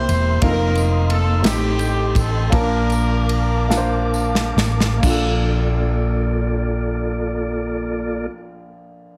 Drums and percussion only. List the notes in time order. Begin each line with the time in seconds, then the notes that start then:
0.09 ride bell, tambourine
0.42 kick, ride bell
0.75 ride bell, tambourine
1.10 ride bell
1.44 snare, ride bell, tambourine
1.79 ride bell, tambourine
2.15 kick, ride bell, tambourine
2.52 kick, ride bell
2.90 ride bell, tambourine
3.29 ride bell
3.71 snare, tambourine
4.14 tambourine
4.35 snare
4.58 snare, tambourine
4.80 snare
5.03 kick, crash, tambourine